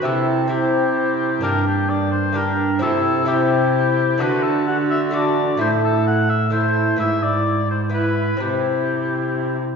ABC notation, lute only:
X:1
M:3/4
L:1/8
Q:1/4=129
K:Clyd
V:1 name="Lute"
[CEG]2 [CEG]4 | [_B,DG]4 [B,DG]2 | [CEG]2 [CEG]4 | [A,DF]4 [A,DF]2 |
[A,E]4 [A,E]2 | [B,E]4 [B,E]2 | [CE]6 |]
V:2 name="Lute" clef=bass
C,6 | G,,6 | C,6 | D,6 |
A,,6 | ^G,,6 | C,4- C, z |]